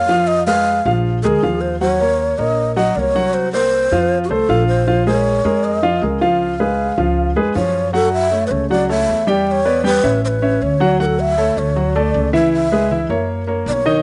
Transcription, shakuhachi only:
0.00 0.29 F5 loud
0.28 0.46 D#5 loud
0.47 0.93 F5 loud
1.23 1.28 A4 medium
1.27 1.62 G#4 medium
1.61 1.80 C5 medium
1.80 2.40 C#5 loud
2.38 2.76 D#5 medium
2.76 2.97 D#5 medium
2.95 3.01 D5 medium
3.00 3.35 C#5 medium
3.33 3.52 C5 loud
3.53 4.19 C5 loud
4.24 4.31 F#4 medium
4.29 4.67 A4 medium
4.68 5.04 C5 medium
5.06 5.66 C#5 loud
5.64 6.02 D#5 medium
6.21 7.32 F5 medium
7.56 7.91 C#5 loud
7.94 8.12 A4 loud
8.13 8.44 E5 loud
8.47 8.53 B4 medium
8.51 8.70 C#5 medium
8.70 8.88 D5 medium
8.90 9.30 E5 medium
9.28 9.47 D5 medium
9.47 9.53 D5 medium
9.52 9.85 C#5 loud
9.86 10.21 B4 loud
10.25 10.64 B4 medium
10.25 10.29 C5 medium
10.62 11.00 C#5 medium
11.01 11.07 A#4 medium
11.06 11.21 A4 medium
11.20 11.60 E5 loud
11.58 11.97 C#5 medium
11.96 12.34 D5 medium
12.34 12.52 E5 medium
12.53 13.25 E5 medium
13.68 13.74 D5 medium
13.73 14.02 C#5 loud

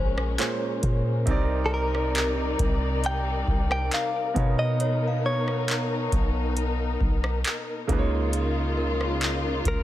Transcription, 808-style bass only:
0.00 0.37 A#1 loud
0.83 1.25 A#2 loud
1.27 2.55 C2 loud
2.59 3.44 C2 loud
3.48 3.90 C2 loud
4.36 6.08 B2 loud
6.12 6.97 B1 loud
7.01 7.43 B1 loud
7.89 9.62 C#2 loud
9.66 9.83 C#2 loud

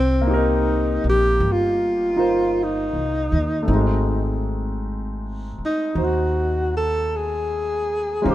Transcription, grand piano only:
0.21 3.65 A#3 medium
0.21 3.65 C4 soft
0.27 2.15 D#4 medium
0.27 3.69 G4 medium
0.34 2.17 A#4 medium
2.16 3.68 D#4 soft
2.16 3.69 F4 soft
2.16 3.69 A#4 soft
2.16 3.70 C5 soft
3.63 8.21 A3 soft
3.63 8.23 C4 soft
3.69 5.94 D#4 soft
3.69 5.95 F#4 soft
3.75 8.20 G#3 soft
5.95 8.23 D#4 soft
5.95 8.24 F#4 soft
5.95 8.25 C5 soft
8.22 8.35 G#3 soft
8.22 8.35 C#4 soft
8.22 8.35 D#4 soft
8.22 8.35 F4 soft
8.27 8.35 C5 soft

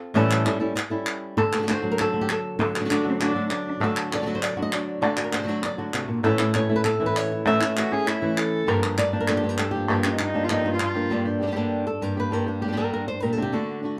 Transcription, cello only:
2.90 3.12 D4 medium
3.10 3.19 C4 medium
3.20 3.49 D4 medium
3.51 3.72 D4 medium
7.77 7.93 F#4 medium
7.92 8.08 G#4 medium
8.07 8.39 E4 medium
8.38 8.60 A4 medium
10.05 10.12 D4 medium
10.12 10.19 D#4 medium
10.20 10.45 D#4 medium
10.43 10.53 F4 medium
10.51 10.72 D#4 medium
10.73 10.80 F4 medium
10.82 11.09 F4 medium

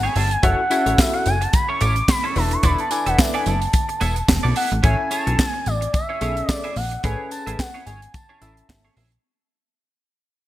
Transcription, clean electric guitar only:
0.03 0.14 C#4 medium
0.03 0.15 E4 medium
0.03 0.15 G#4 medium
0.03 0.16 C#5 medium
0.15 0.29 C#4 medium
0.15 0.29 E4 medium
0.15 0.29 G#4 medium
0.15 0.30 E5 medium
0.31 muted clean electric guitar stroke medium
0.43 0.60 C#4 medium
0.43 0.58 E4 loud
0.43 0.57 A4 loud
0.43 0.57 C#5 loud
0.58 muted clean electric guitar stroke soft
0.71 0.84 C#4 medium
0.71 0.84 E4 medium
0.71 0.84 A4 medium
0.71 0.85 C#5 medium
0.86 0.97 C#4 medium
0.86 0.97 E4 medium
0.86 0.97 A4 medium
0.86 0.97 C#5 medium
1.14 muted clean electric guitar stroke medium
1.41 muted clean electric guitar stroke medium
1.53 muted clean electric guitar stroke soft
1.69 1.79 C#4 medium
1.69 1.80 E4 medium
1.69 1.79 A4 medium
1.69 1.79 C#5 medium
1.81 1.98 C#4 loud
1.81 1.96 E4 loud
1.81 1.95 A4 loud
1.81 1.95 C#5 loud
1.96 muted clean electric guitar stroke soft
2.08 muted clean electric guitar stroke soft
2.24 2.36 C#4 medium
2.24 2.35 E4 medium
2.24 2.35 A4 medium
2.24 2.36 E5 medium
2.36 muted clean electric guitar stroke soft
2.51 muted clean electric guitar stroke soft
2.63 2.89 B3 medium
2.63 2.89 E4 medium
2.63 2.89 A4 loud
2.63 2.90 D5 loud
2.91 muted clean electric guitar stroke soft
3.06 3.18 B3 medium
3.06 3.17 E4 medium
3.06 3.17 A4 medium
3.06 3.17 E5 medium
3.19 muted clean electric guitar stroke soft
3.34 3.45 B3 medium
3.34 3.45 E4 loud
3.34 3.45 A4 medium
3.34 3.46 D5 loud
3.46 3.59 B3 medium
3.46 3.60 E4 medium
3.46 3.60 A4 medium
3.46 3.60 D5 medium
3.61 muted clean electric guitar stroke soft
3.73 muted clean electric guitar stroke soft
3.89 muted clean electric guitar stroke soft
4.01 4.18 B3 medium
4.01 4.15 E4 loud
4.01 4.15 A4 loud
4.01 4.16 E5 loud
4.16 muted clean electric guitar stroke soft
4.28 muted clean electric guitar stroke soft
4.43 4.54 B3 medium
4.43 4.55 E4 medium
4.43 4.55 A4 medium
4.43 4.56 D5 medium
4.55 4.69 B3 medium
4.55 4.69 E4 medium
4.55 4.70 A4 medium
4.55 4.70 E5 medium
4.71 muted clean electric guitar stroke soft
4.83 5.00 C#4 medium
4.83 4.98 E4 loud
4.83 4.98 G#4 medium
4.83 4.97 C#5 loud
4.98 muted clean electric guitar stroke soft
5.10 5.24 C#4 medium
5.10 5.25 E4 medium
5.10 5.25 G#4 medium
5.10 5.25 C#5 medium
5.26 5.37 C#4 soft
5.26 5.37 E4 medium
5.26 5.37 G#4 medium
5.26 5.37 C#5 medium
5.38 muted clean electric guitar stroke soft
5.53 muted clean electric guitar stroke soft
5.81 muted clean electric guitar stroke soft
5.93 muted clean electric guitar stroke soft
6.09 6.19 C#4 soft
6.09 6.20 E4 medium
6.09 6.20 G#4 medium
6.09 6.20 C#5 medium
6.21 6.38 C#4 medium
6.21 6.36 E4 medium
6.21 6.36 G#4 medium
6.21 6.35 C#5 medium
6.49 muted clean electric guitar stroke soft
6.64 6.75 C#4 medium
6.64 6.75 E4 medium
6.64 6.76 G#4 medium
6.64 6.77 E5 medium
6.76 muted clean electric guitar stroke soft
6.92 muted clean electric guitar stroke soft
7.04 7.29 C#4 medium
7.04 7.30 E4 medium
7.04 7.30 G#4 medium
7.04 7.30 C#5 medium
7.31 muted clean electric guitar stroke soft
7.46 7.58 C#4 medium
7.46 7.58 E4 medium
7.46 7.57 G#4 medium
7.46 7.57 E5 medium
7.59 muted clean electric guitar stroke soft
7.74 7.85 C#4 medium
7.74 7.86 E4 medium
7.74 7.86 G#4 medium
7.74 7.86 C#5 medium
7.86 8.00 C#4 medium
7.86 8.00 E4 medium
7.86 8.00 G#4 medium
7.86 8.00 C#5 medium
8.02 muted clean electric guitar stroke soft
8.14 muted clean electric guitar stroke soft
8.29 8.40 C#4 medium
8.29 8.40 E4 medium
8.29 8.41 G#4 medium
8.29 8.42 C#5 medium
8.41 8.55 C#4 medium
8.41 8.55 E4 medium
8.41 8.55 G#4 medium
8.41 8.55 E5 medium
8.69 muted clean electric guitar stroke soft
8.85 8.95 C#4 medium
8.85 8.95 E4 medium
8.85 8.96 G#4 medium
8.85 8.97 C#5 medium
8.96 9.10 C#4 medium
8.96 9.10 E4 medium
8.96 9.10 G#4 medium
8.96 9.10 E5 medium
9.12 muted clean electric guitar stroke soft

